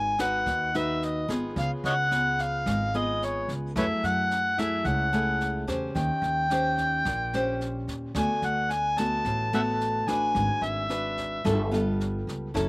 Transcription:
Already playing: upright bass G#1, nylon-string guitar G#3 D#4 F#4 B4, harmonica G#5
0.19 nylon-string guitar D#4 F#4 B4, harmonica F#5, kick, cross-stick, snare
0.46 upright bass D#2, nylon-string guitar D#3, kick, snare
0.74 nylon-string guitar D#4 F#4 B4, harmonica E5, snare
1.02 harmonica D#5, snare
1.28 upright bass G#1, nylon-string guitar B3 F4 G#4, kick, cross-stick, snare
1.56 upright bass C#2, nylon-string guitar C#3, harmonica F5, kick, snare
1.84 upright bass C#2, harmonica C#5 D#5 F#5, snare
2.11 nylon-string guitar B3 F4 G#4, cross-stick, snare
2.39 harmonica F5, kick, snare
2.66 upright bass G#1, nylon-string guitar G#3, kick, cross-stick, snare
2.94 nylon-string guitar B3 F4 G#4, harmonica D#5, snare
3.22 harmonica C#5, snare
3.48 upright bass C#2, kick, snare
3.76 upright bass F#2, nylon-string guitar F#3 A3 E4 G#4, harmonica B4 C#5 E5, kick, cross-stick, snare
4.03 upright bass F#2, harmonica F#5, snare
4.31 snare
4.58 nylon-string guitar A3 E4 G#4, harmonica E5, kick, cross-stick, snare
4.85 upright bass C#2, nylon-string guitar C#3, harmonica F#5, kick, snare
5.13 nylon-string guitar A3 E4 G#4, snare
5.41 snare
5.67 upright bass E2, nylon-string guitar C#4 G4 C5, kick, cross-stick, snare
5.95 upright bass D#2, nylon-string guitar D#3, harmonica G5, kick, snare
6.22 upright bass D#2, snare
6.50 nylon-string guitar C#4 G4 C5, cross-stick, snare
6.78 kick, snare
7.05 upright bass A#1, nylon-string guitar A#2, kick, cross-stick, snare
7.33 nylon-string guitar C#4 G4 C5, snare
7.61 snare
7.88 upright bass D#2, kick, snare
8.15 upright bass D2, nylon-string guitar D3 A3 B3 F#4, harmonica G#5, kick, cross-stick, snare
8.42 upright bass D2, harmonica F#5, snare
8.70 harmonica G#5, snare
8.97 nylon-string guitar A3 B3 F#4, harmonica A5, kick, cross-stick, snare
9.25 upright bass A1, nylon-string guitar A2, kick, snare
9.53 nylon-string guitar A3 B3 F#4, harmonica E5 F#5 A5, snare
9.81 snare
10.07 upright bass A1, nylon-string guitar D4 F#4 B4, harmonica G#5, kick, cross-stick, snare
10.35 upright bass G#1, nylon-string guitar G#3, kick, snare
10.61 upright bass G#1, harmonica E5, snare
10.89 nylon-string guitar D4 F#4 B4, cross-stick, snare
11.17 kick, snare
11.44 upright bass G1, nylon-string guitar G3 B3 F4 A4, kick, cross-stick, snare
11.71 nylon-string guitar B3 F4 A4, snare
12.00 snare
12.27 upright bass C#2, kick, snare
12.54 upright bass F#1, nylon-string guitar F#3 C#4 E4 A4, kick, cross-stick, snare

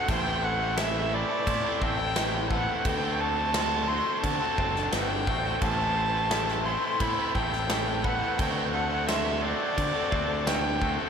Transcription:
Already playing: clean electric guitar A3 C4 C5, overdriven electric guitar A4
0.08 fingered electric bass A1, overdriven electric guitar A2 E3 A3 C4 E4 A4, clean electric guitar C5, violin G5, kick, crash
0.25 overdriven electric guitar A3 C4 E4 A4
0.42 clean electric guitar A3 C5, violin F#5
0.60 overdriven electric guitar A3 C4 E4 A4
0.77 overdriven electric guitar A2 E3 A3 C4 E4 A4, violin E5, snare, crash
1.12 overdriven electric guitar E3 A3 C4 E4 A4, clean electric guitar B4, violin D5
1.29 overdriven electric guitar A3 C4 E4 A4
1.47 fingered electric bass A2, clean electric guitar E4 C5, kick, crash
1.64 overdriven electric guitar A3 C4 E4 A4
1.81 fingered electric bass A1, overdriven electric guitar E3 A3 C4 E4 A4, clean electric guitar A4, violin G5, kick
1.98 overdriven electric guitar C4 E4 A4, muted overdriven electric guitar stroke
2.03 overdriven electric guitar A3
2.16 overdriven electric guitar A2 E3 A3 C4 E4 A4, snare, crash
2.34 muted overdriven electric guitar stroke
2.50 overdriven electric guitar E3 A3 C4 E4 A4, clean electric guitar B4, violin F#5, kick
2.67 overdriven electric guitar A3 C4 E4 A4
2.84 fingered electric bass D2, overdriven electric guitar D3 A3 C4 F#4 A4, violin G5, kick, crash
3.02 overdriven electric guitar C4 F#4 A4
3.06 overdriven electric guitar A3
3.20 clean electric guitar A3 A4, violin A5
3.36 overdriven electric guitar C4 F#4 A4
3.53 overdriven electric guitar D3 A3 C4 F#4 A4, clean electric guitar C5, snare, crash
3.88 overdriven electric guitar D3 A3 C4 F#4 A4, violin C6
4.06 overdriven electric guitar C4 F#4 A4
4.22 fingered electric bass D3, clean electric guitar A4, violin A5, kick, crash
4.40 overdriven electric guitar A3 C4 F#4 A4
4.58 fingered electric bass F#1, overdriven electric guitar D3 A3 C4 F#4 A4, clean electric guitar C5, kick
4.75 overdriven electric guitar C4 F#4 A4, muted overdriven electric guitar stroke, snare
4.91 fingered electric bass G1, overdriven electric guitar D3 A3 C4 F#4 A4, clean electric guitar B4, violin G5, snare, crash
5.11 muted overdriven electric guitar stroke
5.27 fingered electric bass A1, overdriven electric guitar D3 A3 C4 F#4 A4, clean electric guitar C5, kick
5.45 overdriven electric guitar A3 C4 F#4 A4
5.62 fingered electric bass A1, overdriven electric guitar A2 E3 A3 C4 E4 A4, clean electric guitar C5, violin A5, kick, crash
5.78 overdriven electric guitar A3 C4 E4 A4
5.96 clean electric guitar A3 C5
6.13 overdriven electric guitar A3 C4 E4 A4
6.29 overdriven electric guitar A2 E3 A3 C4 E4 A4, snare, crash
6.48 snare
6.64 overdriven electric guitar E3 A3 C4 E4 A4, clean electric guitar C5, violin C6
6.82 overdriven electric guitar A3 C4 E4 A4
7.00 fingered electric bass A2, clean electric guitar E4 C5, violin B5, kick, crash
7.16 overdriven electric guitar A3 C4 E4 A4
7.34 fingered electric bass A1, overdriven electric guitar E3 A3 C4 E4 A4, clean electric guitar A4, violin G5, kick
7.51 overdriven electric guitar A3 C4 E4 A4, muted overdriven electric guitar stroke, snare
7.68 overdriven electric guitar A2 E3 A3 C4 E4 A4, snare, crash
7.87 muted overdriven electric guitar stroke
8.04 overdriven electric guitar E3 A3 C4 E4 A4, clean electric guitar B4, violin F#5, kick
8.21 overdriven electric guitar A3 C4 E4 A4
8.38 fingered electric bass D2, overdriven electric guitar D3 A3 C4 F#4 A4, violin G5, kick, crash
8.56 overdriven electric guitar A3 C4 F#4 A4
8.73 clean electric guitar A3 A4, violin F#5
8.89 overdriven electric guitar C4 F#4 A4
9.07 overdriven electric guitar D3 A3 C4 F#4 A4, clean electric guitar C5, violin E5, snare, crash
9.42 overdriven electric guitar D3 A3 C4 F#4 A4, violin D5
9.59 overdriven electric guitar C4 F#4 A4
9.78 fingered electric bass D3, clean electric guitar A4, kick, crash
9.94 overdriven electric guitar A3 C4 F#4 A4
10.11 fingered electric bass D2, overdriven electric guitar D3 A3 C4 F#4 A4, clean electric guitar C5, kick
10.29 overdriven electric guitar C4 F#4 A4, muted overdriven electric guitar stroke
10.45 overdriven electric guitar D3 A3 C4 F#4 A4, clean electric guitar B4, violin G5, snare, crash
10.64 muted overdriven electric guitar stroke
10.80 overdriven electric guitar D3 A3 C4 F#4 A4, clean electric guitar C5, kick
10.98 overdriven electric guitar A3 C4 F#4 A4

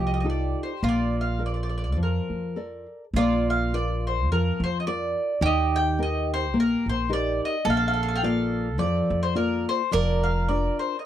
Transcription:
Already playing: upright bass C2, nylon-string guitar F3, mandolin G4
0.07 mandolin D#5
0.14 mandolin D#5
0.20 nylon-string guitar D#4, mandolin D#5
0.25 nylon-string guitar F4 A4
0.30 mandolin D5
0.63 mandolin C5
0.83 upright bass A#1, nylon-string guitar A#3, mandolin F4
0.89 mandolin D5
1.21 mandolin F5
1.39 nylon-string guitar A4 A#4 D5
1.46 mandolin D5
1.54 mandolin D5
1.63 mandolin D5
1.69 mandolin D5
1.78 mandolin D5
1.84 mandolin D5
1.92 mandolin D5
1.97 upright bass F2, nylon-string guitar F3
2.03 mandolin A#4
2.30 upright bass F2
2.56 nylon-string guitar A4 A#4 D5
3.13 upright bass A#1, nylon-string guitar A#3, mandolin F4
3.18 mandolin D5
3.50 mandolin F5
3.73 nylon-string guitar F4 A#4 D5, mandolin D5
4.07 mandolin C5
4.29 upright bass F2, nylon-string guitar F3, mandolin A#4
4.60 upright bass F2, mandolin C5
4.80 mandolin D#5
4.87 nylon-string guitar F4 A#4 D5, mandolin D5
5.41 upright bass D#2, nylon-string guitar D#3, mandolin G4
5.46 mandolin D#5
5.76 mandolin G5
5.99 nylon-string guitar D#4 G4 A#4
6.03 mandolin D#5
6.34 mandolin C5
6.54 upright bass A#1, nylon-string guitar A#3
6.60 mandolin A#4
6.86 upright bass A#1, mandolin C5
7.09 nylon-string guitar D#4 G4 A#4, mandolin D5
7.45 mandolin D#5
7.64 upright bass A#1, nylon-string guitar A#3, mandolin A4
7.70 mandolin F5
7.77 mandolin F5
7.88 mandolin F5
7.94 mandolin F5
8.03 mandolin F5
8.08 mandolin F5
8.15 mandolin F5 G5
8.23 nylon-string guitar A#3 F4 D5, mandolin F5
8.78 upright bass F2, nylon-string guitar F3, mandolin D5
9.10 upright bass F2
9.23 mandolin C5
9.35 nylon-string guitar A#3 F4 D5, mandolin A#4
9.69 mandolin C5
9.91 upright bass F1, nylon-string guitar F3, mandolin A#4 D5
10.24 mandolin F5
10.48 nylon-string guitar D4 F4 A#4, mandolin D5
10.79 mandolin C5
10.99 mandolin D#5

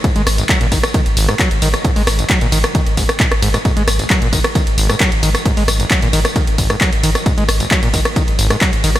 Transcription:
0.04 acid bass G#2, kick, closed hi-hat, ride, tambourine
0.16 sub bass G#1, acid bass G#3, closed hi-hat, ride
0.27 sub bass G#1, cross-stick, open hi-hat, ride, tambourine
0.38 acid bass G#1, closed hi-hat, ride, tambourine
0.49 acid bass F#3, kick, clap, closed hi-hat, ride, tambourine
0.61 sub bass G#1, acid bass A#2, closed hi-hat, ride
0.72 sub bass G#1, acid bass D#3, kick, open hi-hat, ride, tambourine
0.83 cross-stick, closed hi-hat, ride, tambourine
0.94 acid bass D#3, kick, closed hi-hat, ride, tambourine
1.06 sub bass G#1, closed hi-hat, ride
1.17 sub bass G#1, acid bass G#1, open hi-hat, ride, tambourine
1.29 acid bass G#2, cross-stick, ride, tambourine
1.39 acid bass F#3, kick, clap, closed hi-hat, ride, tambourine
1.51 sub bass G#1, closed hi-hat, ride
1.62 sub bass G#1, acid bass D#3, open hi-hat, ride, tambourine
1.74 cross-stick, closed hi-hat, ride, tambourine
1.85 acid bass G#2, kick, closed hi-hat, ride, tambourine
1.96 sub bass G#1, acid bass G#3, open hi-hat, ride
2.07 sub bass G#1, cross-stick, open hi-hat, ride, tambourine
2.19 acid bass G#1, closed hi-hat, ride, tambourine
2.30 acid bass F#3, kick, clap, closed hi-hat, ride, tambourine
2.41 sub bass G#1, acid bass A#2, closed hi-hat, ride
2.52 sub bass G#1, acid bass D#3, open hi-hat, ride, tambourine
2.64 cross-stick, closed hi-hat, ride, tambourine
2.75 acid bass D#3, kick, closed hi-hat, ride, tambourine
2.86 sub bass G#1, closed hi-hat, ride
2.97 sub bass G#1, acid bass G#2, kick, open hi-hat, ride, tambourine
3.09 cross-stick, closed hi-hat, ride, tambourine
3.20 acid bass A#2, kick, clap, closed hi-hat, ride, tambourine
3.32 sub bass G#1, cross-stick, closed hi-hat, ride
3.42 sub bass G#1, acid bass G#2, open hi-hat, ride, tambourine
3.54 acid bass G#2, cross-stick, closed hi-hat, ride, tambourine
3.65 acid bass G#2, kick, closed hi-hat, ride, tambourine
3.77 sub bass G#1, acid bass G#3, closed hi-hat, ride
3.88 sub bass G#1, cross-stick, open hi-hat, ride, tambourine
3.99 acid bass G#1, closed hi-hat, ride, tambourine
4.10 acid bass F#3, kick, clap, closed hi-hat, ride, tambourine
4.22 sub bass G#1, acid bass A#2, closed hi-hat, ride
4.33 sub bass G#1, acid bass D#3, kick, open hi-hat, ride, tambourine
4.44 cross-stick, closed hi-hat, ride, tambourine
4.55 acid bass D#3, kick, closed hi-hat, ride, tambourine
4.67 sub bass G#1, closed hi-hat, ride
4.78 sub bass G#1, acid bass G#1, open hi-hat, ride, tambourine
4.89 acid bass G#2, cross-stick, closed hi-hat, ride, tambourine
5.00 acid bass F#3, kick, clap, closed hi-hat, ride, tambourine
5.12 sub bass G#1, closed hi-hat, ride
5.23 sub bass G#1, acid bass D#3, open hi-hat, ride, tambourine
5.35 cross-stick, closed hi-hat, ride, tambourine
5.45 acid bass G#2, kick, closed hi-hat, ride, tambourine
5.57 sub bass G#1, acid bass G#3, open hi-hat, ride
5.68 sub bass G#1, cross-stick, open hi-hat, ride, tambourine
5.80 acid bass G#1, closed hi-hat, ride, tambourine
5.91 acid bass F#3, kick, clap, closed hi-hat, ride, tambourine
6.02 sub bass G#1, acid bass A#2, closed hi-hat, ride
6.13 sub bass G#1, acid bass D#3, open hi-hat, ride, tambourine
6.25 cross-stick, closed hi-hat, ride, tambourine
6.36 acid bass D#3, kick, closed hi-hat, ride, tambourine
6.47 sub bass G#1, closed hi-hat, ride
6.58 acid bass G#1, sub bass G#1, kick, open hi-hat, ride, tambourine
6.70 acid bass G#2, cross-stick, closed hi-hat, ride, tambourine
6.81 acid bass F#3, kick, clap, closed hi-hat, ride, tambourine
6.92 sub bass G#1, closed hi-hat, ride
7.03 sub bass G#1, acid bass D#3, open hi-hat, ride, tambourine
7.15 cross-stick, closed hi-hat, ride, tambourine
7.26 acid bass G#2, kick, closed hi-hat, ride, tambourine
7.38 sub bass G#1, acid bass G#3, closed hi-hat, ride
7.48 sub bass G#1, cross-stick, open hi-hat, ride, tambourine
7.60 acid bass G#1, closed hi-hat, ride, tambourine
7.71 acid bass F#3, kick, clap, closed hi-hat, ride, tambourine
7.83 sub bass G#1, acid bass A#2, closed hi-hat, ride
7.94 sub bass G#1, acid bass D#3, kick, open hi-hat, ride, tambourine
8.05 cross-stick, closed hi-hat, ride, tambourine
8.16 acid bass D#3, kick, closed hi-hat, ride, tambourine
8.28 sub bass G#1, closed hi-hat, ride
8.39 acid bass G#1, sub bass G#1, open hi-hat, ride, tambourine
8.50 acid bass G#2, cross-stick, closed hi-hat, ride, tambourine
8.61 acid bass F#3, kick, clap, closed hi-hat, ride, tambourine
8.73 sub bass G#1, closed hi-hat, ride
8.84 sub bass G#1, acid bass D#3, open hi-hat, ride, tambourine
8.96 cross-stick, closed hi-hat, ride, tambourine

